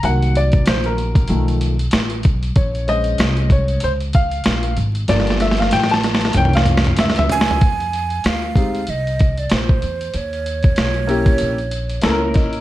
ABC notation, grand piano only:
X:1
M:4/4
L:1/16
Q:"Swing 16ths" 1/4=95
K:Cm
V:1 name="Grand piano"
_g2 d2 c B4 z6 z | _d2 e4 d2 c2 f4 z2 | d2 =e f g =a3 g f3 e e3 | z16 |
z12 b2 e2 |]
V:2 name="Grand piano"
[E,_G,B,]8 [^D,^E,=A,]2 z6 | z2 [A,_Dc]6 z8 | [F,=A,B,]8 [=E,B,_D]8 | z6 [A,CEG]2 z8 |
z6 [B,_D_FG]2 z4 [B,DF=AB]4 |]